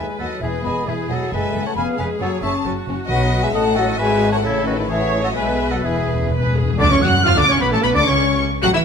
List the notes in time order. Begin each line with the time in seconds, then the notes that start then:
Already playing: G#3 B4 G#5
0.00 B4
0.19 D#2 F#3 A4 D#5 F#5
0.41 E1 E2 E3 G#4 B4 E5
0.64 E1 E2 B3 G#4 D#5 G#5 B5
0.85 E1 E2 E3 G#4 B4 E5
1.09 E1 E2 F#3 G#4 A4 D#5 F#5
1.32 F#1 F#2 G#3 A4 B4 E5 G#5
1.53 F#1 F#2 A4
1.65 A3 C#5 F#5 A5
1.75 F1 F2 B3 C#4 G#4 F5 G#5 B5
1.98 F1 F2 G#3 C#4 B4 F5 G#5
2.20 F#1 F#2 F#3 C#4 A4 C#5 F#5
2.42 F#1 F#2 C#4 E5 A5 C#6
2.65 F#1 F#2 C#4 F#4
2.87 F#1 F#2 C#4
3.07 B1 B2 F#3 F#4 B4 D#5 F#5
3.22 D#4
3.33 F#4
3.43 G#3 D#4 B4 E5 G#5
3.54 A1 A2 A3 F#4 D#5 F#5 A5
3.67 D#4
3.76 F#3 F#4 A4 D#5 F#5
3.89 D#4
3.98 G#1 G#2 G#3 G#4 B4 E5 G#5
4.11 E4
4.22 G#4
4.32 A3 E4 C#5 F#5 A5
4.43 A1 A2 C#3 C#4 E4 A4 C#5
4.55 E4
4.65 D#3 C#4 F#4 B4 D#5
4.77 E4
4.88 E3 G#4 A4 C#5 E5
4.99 F#4
5.12 A4
5.23 F#3 F#4 A4 D#5 F#5
5.34 B1 B2 G#3 B4 E5 G#5
5.46 A4
5.58 B4
5.71 F#3 A4 D#5 F#5
5.82 E1 E2 E3 G#4 B4 E5
5.91 E2
5.96 E2 G#4
6.07 E2 B4
6.15 E2
6.22 E2 G#4
6.30 E2 B4
6.39 E2
6.44 E2 G#4
6.54 E2 G#4 B4
6.62 E2
6.67 E2 G#4
6.78 D2 F#2 D3 D4 D5 D6
6.90 C#2 C#3 C#4 C#5 C#6
7.02 F#2 F#3 F#4 F#5 F#6
7.24 F2 F3 F4 F5 F6
7.28 F5 F6
7.36 D2 D3 D4 D5 D6
7.40 D6
7.48 C#2 C#3 C#4 C#5 C#6
7.52 C#6
7.60 B1 B2 B3 B4 B5
7.71 A1 A2 A3 A4 A5
7.83 B1 B2 B3 B4 B5
7.94 D2 D3 D4 D5 D6
8.06 C#2 C#3 C#4 C#5 C#6
8.62 A1 F#3 F#4 F#5 F#6
8.74 E3 E4 E5 E6